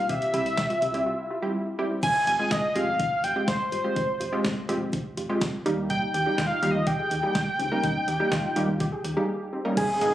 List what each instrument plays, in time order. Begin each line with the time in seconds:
Already playing: analog synth lead F5
0.09 fm bass C2, synth pluck G4, analog synth lead E5, kick, closed hi-hat
0.22 closed hi-hat
0.34 fm bass C2, analog polysynth G3 C4 E4 G4, synth pluck E4, closed hi-hat
0.46 closed hi-hat
0.57 fm bass C2, synth pluck G4, kick, snare, closed hi-hat
0.70 synth pluck F4, closed hi-hat
0.82 fm bass C2, analog polysynth E4 G4, synth pluck E4, closed hi-hat
0.94 fm bass C2, analog polysynth G3 C4 E4 G4, closed hi-hat
1.06 synth pluck F4
1.18 synth pluck E4
1.30 analog polysynth E4 G4, synth pluck F4
1.42 analog polysynth G3 C4 E4 G4
1.55 synth pluck E4
1.79 analog polysynth G3 C4 E4 G4, synth pluck E4
1.91 synth pluck C4
2.03 fm bass F1, analog synth lead G#5, kick, closed hi-hat, crash
2.27 fm bass F1, analog polysynth F4 G4, analog synth lead G#5, closed hi-hat
2.39 analog polysynth G#3 C4 F4 G#4
2.51 fm bass F1, analog synth lead D#5, kick, snare, closed hi-hat
2.75 fm bass F1, analog polysynth G#3 C4 F4 G4, analog synth lead F5, closed hi-hat
2.88 fm bass F1
3.00 fm bass F1, kick, closed hi-hat
3.24 fm bass F1, analog polysynth F4 G4, analog synth lead G5, closed hi-hat
3.36 analog polysynth G#3 C4 F4 G4
3.48 fm bass F1, analog synth lead C5, kick, snare, closed hi-hat
3.72 fm bass G1, analog polysynth F4 G4, analog synth lead C5, closed hi-hat
3.84 analog polysynth G#3 C4 F4 G4
3.96 fm bass F1, kick, closed hi-hat
4.20 fm bass F1, analog polysynth F4 G4, closed hi-hat
4.32 analog polysynth G#3 C4 F4 G4
4.45 fm bass F1, kick, snare, closed hi-hat
4.69 fm bass F1, analog polysynth G#3 C4 F4 G4, closed hi-hat
4.81 fm bass F1
4.93 fm bass F1, kick, closed hi-hat
5.17 fm bass F1, analog polysynth F4 G4, closed hi-hat
5.29 analog polysynth G#3 C4 F4 G4
5.41 fm bass F1, kick, snare, closed hi-hat
5.66 fm bass D#2, analog polysynth G3 A#3 D#4 G4, closed hi-hat
5.90 synth pluck D#4, analog synth lead G5, kick, closed hi-hat
6.14 fm bass D#2, analog polysynth D#4 G4, synth pluck G4, analog synth lead G5, closed hi-hat
6.26 analog polysynth G3 A#3 D#4 G4
6.38 fm bass D#2, synth pluck F4, kick, snare, closed hi-hat
6.46 analog synth lead F5
6.51 synth pluck D#4
6.62 fm bass D#2, analog polysynth G3 A#3 D#4 G4, synth pluck F4, closed hi-hat
6.71 analog synth lead D#5
6.75 fm bass D#2
6.87 fm bass D#2, synth pluck G4, analog synth lead G5, kick, closed hi-hat
6.99 synth pluck G#4
7.11 fm bass D#2, analog polysynth D#4 G4, closed hi-hat
7.23 analog polysynth G3 A#3 D#4 G4, synth pluck G#4
7.35 fm bass D#2, synth pluck G4, kick, snare, closed hi-hat
7.59 fm bass C#2, synth pluck C4, analog polysynth D#4 G4, closed hi-hat
7.72 analog polysynth G3 A#3 D#4 A#4, synth pluck C#4
7.84 fm bass D#2, synth pluck D#4, kick, closed hi-hat
8.08 fm bass D#2, analog polysynth D#4 G4, synth pluck G4, closed hi-hat
8.20 analog polysynth G3 A#3 D#4 G4
8.32 fm bass D#2, synth pluck F4, kick, snare, closed hi-hat
8.44 synth pluck D#4
8.56 fm bass D#2, analog polysynth G3 A#3 D#4 G4, synth pluck F4, closed hi-hat
8.68 fm bass D#2
8.80 fm bass D#2, synth pluck G4, kick, closed hi-hat
8.92 synth pluck G#4
9.04 fm bass D#2, analog polysynth D#4 G4, closed hi-hat
9.17 analog polysynth G3 A#3 D#4 G4, synth pluck G#4
9.29 synth pluck G4
9.53 synth pluck C4, analog polysynth D#4 G4
9.65 analog polysynth G3 A#3 D#4 A#4, synth pluck C#4
9.77 fm bass G#1, analog synth lead G#4, kick, closed hi-hat, crash
10.01 fm bass G#1, analog polysynth G#3 A#3 B3 D#4 G#4, closed hi-hat